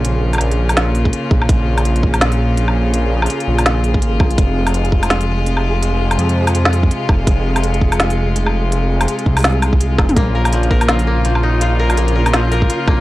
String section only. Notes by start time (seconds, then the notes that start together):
Already playing: C#3 A#3 F4
4.38 C3 G#3
10.16 C#3 A#3 F4